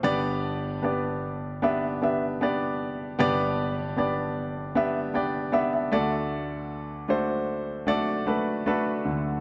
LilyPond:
<<
  \new Staff \with { instrumentName = "Grand piano" } { \time 4/4 \key g \major \tempo 4 = 77 << { r1 | r2 r8 g''8 fis''16 e''16 d''8 | r1 | } \\ { <b d' g' b' d''>4 <b d' g' b' d''>4 <b d' g' b' e''>8 <b d' g' b' e''>8 <b d' g' b' d''>4 | <b d' g' b' d''>4 <b d' g' b' d''>4 <b d' g' b' e''>8 <b d' g' b' d''>8 <b d' g' b' e''>8 <a d' fis' a'>8~ | <a d' fis' a'>4 <a d' fis' a' c''>4 <a d' fis' a' d''>8 <a d' fis' a' b'>8 <a d' fis' a' b'>4 | } >> }
  \new Staff \with { instrumentName = "Grand piano" } { \clef bass \time 4/4 \key g \major <g,, g,>1 | <g,, g,>2.~ <g,, g,>8 <d, d>8~ | <d, d>2.~ <d, d>8 <d, d>8 | }
>>